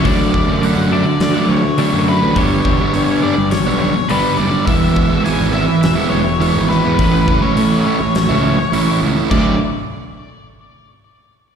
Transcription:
<<
  \new Staff \with { instrumentName = "Lead electric guitar" } { \time 4/4 \key d \major \tempo 4 = 104 d''4 fis''8 d''8 d''8 cis''4 b'8 | cis''4. d''8 cis''8 cis''8 b'8 d''8 | e''4 gis''8 e''8 e''8 cis''4 b'8~ | b'8. cis''8. cis''2 r8 |
d''8 r2. r8 | }
  \new Staff \with { instrumentName = "Overdriven electric guitar" } { \time 4/4 \key d \major <d fis a d'>8. <fis a d'>16 <d fis a d'>8 <d fis a d'>8. <fis a d'>8. <d fis a d'>8 <d fis a d'>16 <fis a d'>16 | <g, d g b d'>8. <g b d'>16 <g, d g b d'>8 <d g b d'>8. <g b d'>8. <g, d g b d'>8 <d g b d'>16 <g b d'>16 | <e gis b e'>8. <gis b e'>16 <e gis b e'>8 <e gis b e'>8. <gis b e'>8. <e gis b e'>8 <e gis b e'>16 <gis b e'>16 | <a, e a cis' e'>8. <a cis' e'>16 <a, e a cis' e'>8 <e a cis' e'>8. <a cis' e'>8. <a, e a cis' e'>8 <e a cis' e'>16 <a cis' e'>16 |
<d fis a d'>8 r2. r8 | }
  \new Staff \with { instrumentName = "Clean electric guitar" } { \clef bass \time 4/4 \key d \major <d a d'>8 d8 <d a>8 <d a d'>8 <d a>8 <d a>8 <d a d'>8 <d a>8 | <g, d g>8 <g, d g>8 g,8 <g, d>8 <g, d>8 <g, d>8 <g, d g>8 g,8 | r1 | r1 |
r1 | }
  \new Staff \with { instrumentName = "Fingered electric bass" } { \clef bass \time 4/4 \key d \major d,8 r16 fis,8 fis,8 r16 d,16 r16 d,8. fis,8 a,,16 | g,,8 e,,16 r16 g,8. g,,8 b,,8 r16 g,,16 r16 fis,,16 r16 | e,,8 r16 gis,,8 gis,,8 r16 e,,16 r16 e,,8. gis,,8 e,16 | a,,8 fis,,16 r16 a,8. a,,8 cis,8 r16 a,,16 r16 cis,16 r16 |
d,8 r2. r8 | }
  \new DrumStaff \with { instrumentName = "Drums" } \drummode { \time 4/4 <hho bd>8 bd8 hho4 <hho sn>4 hho4 | <hho bd>8 bd8 hho4 <hho sn>4 hho4 | <hho bd>8 bd8 hho4 <hho sn>4 hho8 sn8 | <hho bd>8 bd8 hho4 <hho sn>4 hho4 |
<cymc bd>4 r4 r4 r4 | }
>>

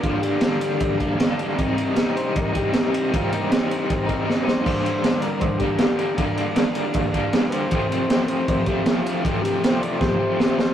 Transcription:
<<
  \new Staff \with { instrumentName = "Transistor combo organ" } { \time 4/4 \key g \minor \tempo 4 = 157 f'8 g'2 r4. | r4. c''8 bes'8 <fis' g'>4. | f'8 bes8 c'2 r8 <b' c''>8~ | <b' c''>4. bes'8 c''8 g'8 g'4 |
r2. r8 <b' c''>8~ | <b' c''>4. c''8 c''8 g'8 f'4 | r8 <fis' g'>8 c''8 d''8 <g' c''>2 | }
  \new Staff \with { instrumentName = "Overdriven electric guitar" } { \time 4/4 \key g \minor <g, d g bes d'>8 <g bes d'>8 <d g bes d'>4. <g bes d'>8 <g, d g bes d'>8 <g bes d'>8 | <c g c' ees'>8 <g c' ees'>8 <c g c' ees'>4. <g c' ees'>8 <c g c' ees'>8 <g c' ees'>8 | <c g c' ees'>8 <g c' ees'>8 <c g c' ees'>4. <g c' ees'>8 <c g c' ees'>8 <g c' ees'>8 | <g, d g bes d'>8 <g bes d'>8 <d g bes d'>4. <g bes d'>8 <g, d g bes d'>8 <g bes d'>8 |
<g, d g bes d'>8 <g bes d'>8 <d g bes d'>4. <g bes d'>8 <g, d g bes d'>8 <g bes d'>8 | <f, c f a c'>8 <f a c'>8 <c f a c'>4. <f a c'>8 <f, c f a c'>8 <f a c'>8 | <f, c f a c'>8 <f a c'>8 <c f a c'>4. <f a c'>8 <f, c f a c'>8 <f a c'>8 | }
  \new DrumStaff \with { instrumentName = "Drums" } \drummode { \time 4/4 <bd cymr>8 cymr8 <cymr sn>8 cymr8 <bd cymr>8 <bd cymr>8 <cymr sn>8 cymr8 | <bd cymr>8 cymr8 <cymr sn>8 cymr8 <bd cymr>8 <bd cymr>8 <cymr sn>8 cymr8 | <bd cymr>8 cymr8 <cymr sn>8 cymr8 <bd cymr>8 <bd cymr>8 sn8 sn8 | <cymc bd>8 cymr8 <cymr sn>8 cymr8 <bd cymr>8 <bd cymr>8 <cymr sn>8 cymr8 |
<bd cymr>8 cymr8 <cymr sn>8 cymr8 <bd cymr>8 <bd cymr>8 <cymr sn>8 cymr8 | <bd cymr>8 cymr8 <cymr sn>8 cymr8 <bd cymr>8 <bd cymr>8 <cymr sn>8 cymr8 | <bd cymr>8 cymr8 <cymr sn>8 cymr8 <bd sn>4 sn8 sn8 | }
>>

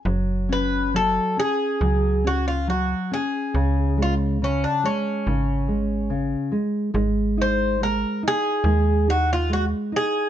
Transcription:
<<
  \new Staff \with { instrumentName = "Bouzouki" } { \time 4/4 \key cis \phrygian \tempo 4 = 70 r8 b'8 a'8 gis'4 fis'16 eis'16 fis'8 gis'8~ | gis'8 eis'8 cis'16 d'16 cis'2 r8 | r8 bis'8 ais'8 gis'4 fis'16 eis'16 fis'8 gis'8 | }
  \new Staff \with { instrumentName = "Nylon-string guitar" } { \clef bass \time 4/4 \key cis \phrygian fis8 cis'8 fis8 cis'8 fis8 cis'8 fis8 cis'8 | cis8 gis8 cis8 gis8 cis8 gis8 cis8 gis8 | gis8 dis'8 gis8 dis'8 gis8 dis'8 gis8 dis'8 | }
  \new Staff \with { instrumentName = "FM bass" } { \clef bass \time 4/4 \key cis \phrygian fis,,2 cis,2 | cis,2 gis,,2 | gis,,2 dis,2 | }
>>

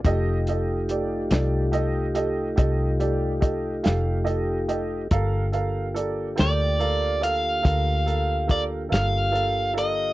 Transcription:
<<
  \new Staff \with { instrumentName = "Overdriven electric guitar" } { \time 12/8 \key f \mixolydian \tempo 4. = 47 r1. | r4. d''4 f''4. d''8 f''4 ees''8 | }
  \new Staff \with { instrumentName = "Upright piano" } { \time 12/8 \key f \mixolydian <g' a' ees''>8 <g' a' ees''>8 <g' a' d''>8 <g' a' d''>8 <g' a' ees''>8 <g' a' ees''>8 <g' a' ees''>8 <g' a' d''>8 <g' a' ees''>8 <g' a' f''>8 <g' a' ees''>8 <g' a' ees''>8 | <a' bes' f''>8 <a' bes' f''>8 <a' bes' d''>8 <a' bes' g''>8 <a' bes' f''>8 <a' bes' f''>8 <a' bes' f''>8 <a' bes' f''>8 <a' bes' f''>8 <a' bes' f''>8 <a' bes' f''>8 <a' bes' f''>8 | }
  \new Staff \with { instrumentName = "Tonewheel organ" } { \time 12/8 \key f \mixolydian <a ees' f' g'>1. | <d bes f' g'>1. | }
  \new Staff \with { instrumentName = "Fingered electric bass" } { \clef bass \time 12/8 \key f \mixolydian f,,4. c,4. c,4. f,,4. | g,,4. d,4. d,4. g,,4. | }
  \new DrumStaff \with { instrumentName = "Drums" } \drummode { \time 12/8 <hh bd>8 hh8 hh8 <hh sn>8 hh8 hh8 <hh bd>8 hh8 <hh bd>8 <hh sn>8 hh8 hh8 | <hh bd>8 hh8 hh8 <hh sn>8 hh8 hh8 <hh bd>8 hh8 <hh bd>8 <hh sn>8 hh8 hh8 | }
>>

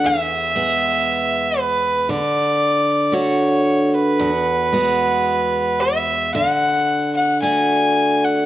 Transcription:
<<
  \new Staff \with { instrumentName = "Fiddle" } { \time 4/4 \key e \mixolydian \tempo 4 = 56 e''4. b'8 d''4 cis''8. b'16~ | b'4. e''8 fis''8. fis''16 gis''8. fis''16 | }
  \new Staff \with { instrumentName = "Steel-string acoustic guitar" } { \time 4/4 \key e \mixolydian <e, gis'>8 <gis b gis'>4. d4 <a d' fis'>4 | <e, fis'>8 <gis b fis'>4. d4 <a d' fis'>4 | }
>>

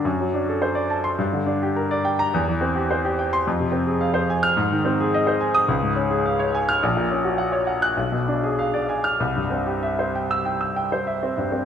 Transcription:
\new Staff \with { instrumentName = "Grand piano" } { \time 4/4 \key g \dorian \tempo 4 = 105 << { r4. r16 c'''16 r4. r16 bes''16 | \key c \phrygian r4. r16 c'''16 r4. r16 f'''16 | r4. r16 ees'''16 r4. r16 f'''16 | r4. r16 ges'''16 r4. r16 f'''16 |
r4. r16 e'''8 r4. r16 | } \\ { fis,16 fis16 d'16 a'16 c''16 d''16 a''8 g,16 d16 d'16 g'16 bes'16 d''16 g''8 | e,16 e16 c'16 g'16 c''16 g'16 g''8 f,16 c16 c'16 aes'16 f''16 c''16 aes''8 | aes,16 ees16 c'16 aes'16 ees''16 c''16 aes''8 des,16 aes,16 des'16 aes'16 f''16 des''16 aes''8 | bes,,16 bes,16 des'16 ges'16 ges''16 des''16 ges''8 b,,16 b,16 d'16 gis'16 f''16 d''16 gis''8 |
c,16 g,16 c'16 g'16 e''16 c''16 g''8 g''16 e'''16 g''16 c''16 e''16 c'16 g,16 c'16 | } >> }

